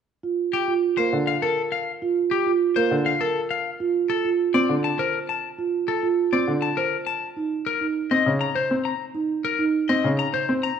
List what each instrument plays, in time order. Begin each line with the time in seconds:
0.23 marimba F4
0.53 clean electric guitar G4
0.68 marimba F4
0.97 grand piano A#3, clean electric guitar C5
1.13 grand piano D3
1.27 clean electric guitar F5
1.42 clean electric guitar A4, marimba A#4
1.72 clean electric guitar F5
2.02 marimba F4
2.31 clean electric guitar G4
2.46 marimba F4
2.76 grand piano A#3, clean electric guitar C5
2.91 grand piano D3
3.06 clean electric guitar F5
3.21 clean electric guitar A4, marimba A#4
3.51 clean electric guitar F5
3.80 marimba F4
4.10 clean electric guitar A4
4.25 marimba F4
4.54 grand piano C4, clean electric guitar D5
4.69 grand piano D3
4.84 clean electric guitar A5
4.99 clean electric guitar A#4, marimba C5
5.29 clean electric guitar A5
5.58 marimba F4
5.88 clean electric guitar A4
6.03 marimba F4
6.33 grand piano C4, clean electric guitar D5
6.48 grand piano D3
6.62 clean electric guitar A5
6.77 clean electric guitar A#4, marimba C5
7.07 clean electric guitar A5
7.37 marimba D#4
7.66 clean electric guitar A#4
7.81 marimba D#4
8.11 grand piano C4, clean electric guitar D#5
8.26 grand piano C#3
8.41 clean electric guitar A#5
8.55 marimba C5, clean electric guitar C5
8.71 grand piano C4
8.85 clean electric guitar A#5
9.15 marimba D#4
9.45 clean electric guitar A#4
9.59 marimba D#4
9.89 grand piano C4, clean electric guitar D#5
10.04 grand piano C#3
10.19 clean electric guitar A#5
10.33 marimba C5, clean electric guitar C5
10.49 grand piano C4
10.63 clean electric guitar A#5